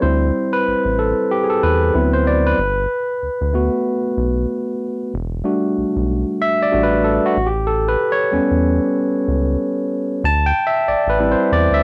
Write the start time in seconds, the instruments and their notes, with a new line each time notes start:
0.01 analog synth bass D2, tine electric piano G3 C4 E4 C5
0.53 tine electric piano B4
0.67 analog synth bass A1
0.85 analog synth bass A1
0.99 tine electric piano A4
1.31 tine electric piano G4
1.44 tine electric piano G#4
1.50 tine electric piano A4
1.63 analog synth bass E2, tine electric piano B4
1.94 analog synth bass D2, tine electric piano F#3 B3 C4 E4
2.13 tine electric piano C5
2.27 tine electric piano D5
2.47 tine electric piano B4
2.58 analog synth bass G1
3.22 analog synth bass D2
3.41 analog synth bass D2
3.53 tine electric piano A3 B3 F#4
4.17 analog synth bass B1
5.14 analog synth bass E1
5.44 tine electric piano G3 A3 D4 F#4
5.78 analog synth bass B1
5.96 analog synth bass B1
6.42 tine electric piano E5
6.62 tine electric piano D5
6.72 analog synth bass A1, tine electric piano G3 A3 D4 F#4
6.83 tine electric piano B4
7.04 tine electric piano A4
7.26 tine electric piano F#4
7.37 analog synth bass A1
7.46 tine electric piano G4
7.67 tine electric piano A4
7.88 tine electric piano B4
8.12 tine electric piano C#5
8.31 analog synth bass E2, tine electric piano G3 B3 C#4
8.51 analog synth bass E2
9.28 analog synth bass C#2
10.24 analog synth bass D2, tine electric piano A5
10.46 tine electric piano G5
10.67 tine electric piano E5
10.88 analog synth bass A1, tine electric piano D5
11.07 analog synth bass A1, tine electric piano B4
11.19 tine electric piano G3 C4 E4
11.32 tine electric piano C5
11.52 analog synth bass E2, tine electric piano D5
11.71 analog synth bass D2, tine electric piano E5